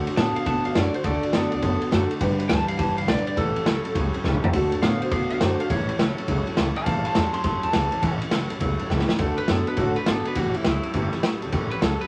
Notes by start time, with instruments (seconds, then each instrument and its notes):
Already playing: clean electric guitar D3 A3
0.06 steel-string acoustic guitar D4 F#4 A4, muted upright bass stroke, ride
0.16 upright bass A2, steel-string acoustic guitar D3 A3 D4 F#4 A4, clean electric guitar B3 A5, snare, ride
0.35 steel-string acoustic guitar D4 F#4 A4, clean electric guitar F5, muted upright bass stroke, ride
0.44 upright bass B2, clean electric guitar D3 B3 A5, steel-string acoustic guitar A3 D4 F#4 A4, kick, snare, ride
0.63 upright bass A2, steel-string acoustic guitar D4 F#4 A4, clean electric guitar F5, ride
0.74 upright bass F#2, steel-string acoustic guitar D3 A3 D4 F#4 A4, clean electric guitar D5, snare, ride
0.93 steel-string acoustic guitar D4 F#4 A4, clean electric guitar C5, muted upright bass stroke, ride
1.03 upright bass D2, steel-string acoustic guitar D3 A3 D4 F#4 A4, clean electric guitar D5, kick, ride
1.22 steel-string acoustic guitar D4 F#4 A4, muted upright bass stroke, ride
1.33 upright bass F#2, steel-string acoustic guitar D3 A3 D4 F#4 A4, clean electric guitar B3, snare, ride
1.51 upright bass D2, steel-string acoustic guitar D4 F#4 A4, ride
1.62 upright bass F#2, clean electric guitar D3 B3, steel-string acoustic guitar A3 D4 F#4 A4, kick, ride
1.81 steel-string acoustic guitar D4 F#4 A4, muted upright bass stroke, ride
1.91 upright bass F#2, steel-string acoustic guitar D3 A3 D4 F#4 A4, snare, ride
2.10 steel-string acoustic guitar D4 F#4 A4, muted upright bass stroke, ride
2.19 upright bass G1, clean electric guitar G2 D3, steel-string acoustic guitar G3 D4 G4 B4, kick, ride
2.39 steel-string acoustic guitar D4 G4 B4, muted upright bass stroke, ride
2.49 upright bass D2, clean electric guitar G2 E3 A5, steel-string acoustic guitar G3 D4 G4 B4, snare, ride
2.68 steel-string acoustic guitar D4 G4 B4, clean electric guitar F5, muted upright bass stroke, ride
2.78 upright bass E2, clean electric guitar G2 E3 A5, steel-string acoustic guitar G3 D4 G4 B4, kick, ride
2.97 upright bass D2, steel-string acoustic guitar D4 G4 B4, clean electric guitar F5, ride
3.07 upright bass B1, clean electric guitar G2 D3 D5, steel-string acoustic guitar G3 D4 G4 B4, snare, ride
3.26 steel-string acoustic guitar D4 G4 B4, clean electric guitar D5, muted upright bass stroke, ride
3.36 upright bass A1, steel-string acoustic guitar A2 E3 G3 C#4 G4 A4, clean electric guitar A4, kick, ride
3.55 steel-string acoustic guitar G3 C#4 G4 A4, muted upright bass stroke, ride
3.65 upright bass C#2, steel-string acoustic guitar A2 E3 G3 C#4 G4 A4, clean electric guitar F#3, snare, ride
3.84 upright bass A1, steel-string acoustic guitar G3 C#4 G4 A4, ride
3.94 upright bass C#2, clean electric guitar A2 F#3, steel-string acoustic guitar G3 C#4 G4 A4, kick, ride
4.13 steel-string acoustic guitar G3 C#4 G4 A4, muted upright bass stroke, ride
4.24 upright bass C#2, steel-string acoustic guitar A2 E3 G3 C#4 G4 A4, kick, snare
4.34 mid tom
4.42 steel-string acoustic guitar G3 C#4 G4 A4, muted upright bass stroke, floor tom
4.53 upright bass D2, steel-string acoustic guitar D3 A3 D4 F#4 A4, kick, ride
4.72 steel-string acoustic guitar D4 F#4 A4, muted upright bass stroke, ride
4.82 upright bass A2, steel-string acoustic guitar D3 A3 D4 F#4 A4, clean electric guitar B3 F5, snare, ride
5.02 steel-string acoustic guitar D4 F#4 A4, clean electric guitar C5, muted upright bass stroke, ride
5.11 upright bass B2, clean electric guitar D3 B3 F5, steel-string acoustic guitar A3 D4 F#4 A4, kick, ride
5.30 upright bass A2, steel-string acoustic guitar D4 F#4 A4, clean electric guitar F5, ride
5.41 upright bass F#2, steel-string acoustic guitar D3 A3 D4 F#4 A4, clean electric guitar C5, snare, ride
5.60 steel-string acoustic guitar D4 F#4 A4, clean electric guitar F5, muted upright bass stroke, ride
5.70 upright bass A1, steel-string acoustic guitar A2 E3 G3 C#4 E4 A4, clean electric guitar C#5, kick, ride
5.88 steel-string acoustic guitar G3 C#4 E4 A4, muted upright bass stroke, ride
5.98 upright bass C#2, steel-string acoustic guitar A2 E3 G3 C#4 E4 A4, clean electric guitar F#3, snare, ride
6.17 upright bass A1, steel-string acoustic guitar G3 C#4 E4 A4, ride
6.27 upright bass C#2, clean electric guitar A2 F#3, steel-string acoustic guitar G3 C#4 E4 A4, kick, ride
6.46 steel-string acoustic guitar G3 C#4 E4 A4, muted upright bass stroke, ride
6.56 upright bass C#2, steel-string acoustic guitar A2 E3 G3 C#4 E4 A4, snare, ride
6.76 steel-string acoustic guitar G3 C#4 E4 A4, clean electric guitar F5 A5, muted upright bass stroke, ride
6.86 upright bass A1, steel-string acoustic guitar A2 E3 G3 C#4 E4 A4, clean electric guitar F5 A5, kick, ride
7.05 steel-string acoustic guitar G3 C#4 E4 A4, clean electric guitar F5 A5, muted upright bass stroke, ride
7.15 upright bass E2, steel-string acoustic guitar A2 E3 G3 C#4 E4 A4, clean electric guitar F#3 A5 C6, snare, ride
7.33 steel-string acoustic guitar G3 C#4 E4 A4, clean electric guitar A5 C6, muted upright bass stroke, ride
7.44 upright bass G2, clean electric guitar A2 F#3 A5 C6, steel-string acoustic guitar G3 C#4 E4 A4, kick, ride
7.62 upright bass E2, steel-string acoustic guitar G3 C#4 E4 A4, clean electric guitar A5, ride
7.72 upright bass C#2, steel-string acoustic guitar A2 E3 G3 C#4 E4 A4, snare, ride
7.91 steel-string acoustic guitar G3 C#4 E4 A4, muted upright bass stroke, ride
8.02 upright bass A1, steel-string acoustic guitar A2 E3 G3 C#4 E4 A4, kick, ride
8.21 steel-string acoustic guitar G3 C#4 E4 A4, muted upright bass stroke, ride
8.31 upright bass C#2, steel-string acoustic guitar A2 E3 G3 C#4 E4 A4, clean electric guitar F#3, snare, ride
8.50 upright bass A1, steel-string acoustic guitar G3 C#4 E4 A4, ride
8.60 upright bass C#2, clean electric guitar A2 F#3, steel-string acoustic guitar G3 C#4 E4 A4, kick, ride
8.79 steel-string acoustic guitar G3 C#4 E4 A4, muted upright bass stroke, ride
8.90 upright bass C#2, steel-string acoustic guitar A2 E3 G3 C#4 E4 A4, kick, snare
8.99 snare
9.09 steel-string acoustic guitar G3 C#4 E4 A4, muted upright bass stroke, snare
9.19 upright bass D2, steel-string acoustic guitar D3 A3 D4 F#4 A4, kick, ride
9.37 steel-string acoustic guitar D4 F#4 A4, clean electric guitar B4, muted upright bass stroke, ride
9.48 upright bass F#2, clean electric guitar D3 B3 A4, steel-string acoustic guitar A3 D4 F#4 A4, snare, ride
9.67 steel-string acoustic guitar D4 F#4 A4, clean electric guitar B4, muted upright bass stroke, ride
9.77 upright bass A2, steel-string acoustic guitar D3 A3 D4 F#4 A4, clean electric guitar F#4, kick, ride
9.96 steel-string acoustic guitar D4 F#4 A4, clean electric guitar B4, muted upright bass stroke, ride
10.06 upright bass G#1, clean electric guitar D3 B3 A4, steel-string acoustic guitar A3 D4 F#4 A4, snare, ride
10.25 steel-string acoustic guitar D4 F#4 A4, clean electric guitar B4, muted upright bass stroke, ride
10.35 upright bass A1, steel-string acoustic guitar A2 E3 G3 C#4 G4 A4, clean electric guitar F#4, kick, ride
10.54 steel-string acoustic guitar G3 C#4 G4 A4, clean electric guitar E4, muted upright bass stroke, ride
10.64 upright bass C#2, clean electric guitar A2 F#3, steel-string acoustic guitar G3 C#4 G4 A4, snare, ride
10.83 steel-string acoustic guitar G3 C#4 G4 A4, muted upright bass stroke, ride
10.94 upright bass G1, steel-string acoustic guitar A2 E3 G3 C#4 G4 A4, kick, ride
11.13 steel-string acoustic guitar G3 C#4 G4 A4, muted upright bass stroke, snare, ride
11.23 upright bass A1, clean electric guitar A2 F#3, steel-string acoustic guitar G3 C#4 G4 A4, snare, ride
11.42 upright bass D2, steel-string acoustic guitar G3 C#4 G4 A4, ride
11.52 upright bass A1, steel-string acoustic guitar A2 E3 G3 C#4 G4 A4, kick, ride
11.71 steel-string acoustic guitar G3 C#4 G4 A4, clean electric guitar B4, muted upright bass stroke, ride
11.81 upright bass C#2, clean electric guitar A2 F#3 A4, steel-string acoustic guitar G3 C#4 G4 A4, snare, ride
12.00 steel-string acoustic guitar G3 C#4 G4 A4, clean electric guitar B4, muted upright bass stroke, ride